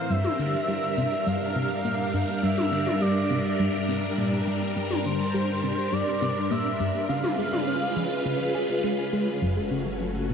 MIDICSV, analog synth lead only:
0, 0, Header, 1, 2, 480
1, 0, Start_track
1, 0, Tempo, 582524
1, 83, Time_signature, 4, 2, 24, 8
1, 8518, End_track
2, 0, Start_track
2, 0, Title_t, "Analog synth lead"
2, 0, Program_c, 0, 81
2, 0, Note_on_c, 0, 77, 112
2, 84, Note_on_c, 0, 76, 123
2, 97, Note_off_c, 0, 77, 0
2, 1043, Note_on_c, 0, 77, 112
2, 1055, Note_off_c, 0, 76, 0
2, 1997, Note_off_c, 0, 77, 0
2, 2002, Note_on_c, 0, 76, 110
2, 2482, Note_on_c, 0, 74, 94
2, 2494, Note_off_c, 0, 76, 0
2, 3202, Note_off_c, 0, 74, 0
2, 4164, Note_on_c, 0, 72, 95
2, 4883, Note_on_c, 0, 74, 105
2, 4896, Note_off_c, 0, 72, 0
2, 5359, Note_off_c, 0, 74, 0
2, 5364, Note_on_c, 0, 76, 116
2, 5811, Note_off_c, 0, 76, 0
2, 5843, Note_on_c, 0, 77, 127
2, 7250, Note_off_c, 0, 77, 0
2, 8518, End_track
0, 0, End_of_file